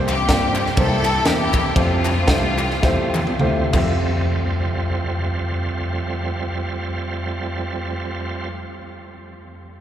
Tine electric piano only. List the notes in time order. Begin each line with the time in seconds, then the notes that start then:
Already playing: C2
0.29 G2
0.77 C2
1.25 E2
1.76 F2
2.28 C2
2.83 E2
3.40 D2
3.74 F2